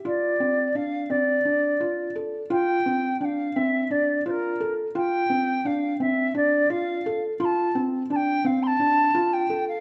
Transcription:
0.05 felt piano F4, flute D5
0.40 felt piano C4
0.75 felt piano D4, flute F5
1.10 felt piano C4, flute D5
1.45 felt piano D4
1.80 felt piano F4
2.15 felt piano A4
2.50 felt piano F4, flute G5
2.86 felt piano C4
3.21 felt piano D4, flute G5
3.25 flute F5
3.56 felt piano C4, flute E5
3.91 felt piano D4, flute D5
4.26 felt piano F4, flute C5
4.31 flute A#4
4.60 felt piano A4
4.95 felt piano F4, flute G5
5.30 felt piano C4
5.65 felt piano D4, flute F5
6.00 felt piano C4, flute E5
6.35 felt piano D4, flute D5
6.70 felt piano F4, flute F5
7.06 felt piano A4
7.40 felt piano F4, flute C6
7.45 flute A5
7.75 felt piano C4
8.10 felt piano D4, flute A5
8.16 flute G5
8.45 felt piano C4, flute F5
8.63 flute A5 C6
8.80 felt piano D4
9.15 felt piano F4
9.33 flute G5
9.50 felt piano A4
9.68 flute F5

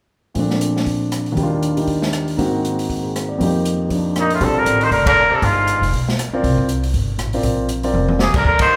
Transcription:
0.34 grand piano A#2 F3 A3 C4, kick, open hi-hat
0.39 grand piano D4
0.50 snare
0.61 closed hi-hat
0.76 snare
0.86 kick, open hi-hat
1.12 cross-stick, closed hi-hat
1.26 open hi-hat
1.32 grand piano D#2 D#3
1.37 grand piano G3 D4, kick, open hi-hat
1.43 grand piano F4
1.63 closed hi-hat
1.76 grand piano G3 A#3 D#4 G4, open hi-hat
1.87 kick, open hi-hat
2.02 snare
2.13 cross-stick, closed hi-hat
2.28 open hi-hat
2.37 grand piano G#2 D#3 A#3 C4 F#4, kick, open hi-hat
2.65 closed hi-hat
2.79 open hi-hat
2.90 kick, open hi-hat
3.03 grand piano G#4
3.15 grand piano C5, cross-stick, closed hi-hat
3.29 grand piano D5
3.38 grand piano F2 F3 A#3, kick, open hi-hat
3.43 grand piano D#4 G4
3.65 closed hi-hat
3.89 grand piano F3 D4, kick, open hi-hat
4.16 tenor saxophone A#2, cross-stick, closed hi-hat
4.20 muted trumpet D#4
4.30 tenor saxophone A2, muted trumpet F4, open hi-hat
4.41 upright bass A#1, tenor saxophone D3, grand piano G3 C4 F4 A4, muted trumpet A4, kick, open hi-hat
4.57 tenor saxophone D3, muted trumpet A#4
4.66 upright bass A1, closed hi-hat
4.81 tenor saxophone D#3, muted trumpet C5, open hi-hat
4.91 upright bass F1, tenor saxophone D3, muted trumpet A#4, kick, open hi-hat
5.06 tenor saxophone D3, muted trumpet A#4, kick, ride
5.31 tenor saxophone C3, muted upright bass stroke
5.35 muted trumpet A4
5.42 upright bass G1, tenor saxophone G#2, muted trumpet F4, kick, open hi-hat
5.68 closed hi-hat
5.81 upright bass F1, open hi-hat
5.93 upright bass B1, kick, open hi-hat
6.09 snare
6.19 cross-stick, closed hi-hat
6.33 grand piano C4 F4 A#4 D5
6.43 upright bass C2, kick, open hi-hat
6.58 kick
6.69 closed hi-hat
6.84 open hi-hat
6.93 upright bass G1, kick, open hi-hat
7.18 upright bass A1, cross-stick, closed hi-hat
7.33 grand piano C4 F4 A#4 D5, open hi-hat
7.43 upright bass A#1, kick, open hi-hat
7.69 closed hi-hat
7.83 grand piano C4 F4 A#4 D5, open hi-hat
7.94 upright bass F1, high tom
8.09 high tom
8.19 tenor saxophone C3, muted trumpet G#4, snare
8.34 tenor saxophone D3, muted trumpet A#4, muted upright bass stroke, kick, crash
8.44 upright bass D#2, tenor saxophone D3, muted trumpet A#4, kick
8.59 tenor saxophone D#3, muted trumpet C5, kick, ride

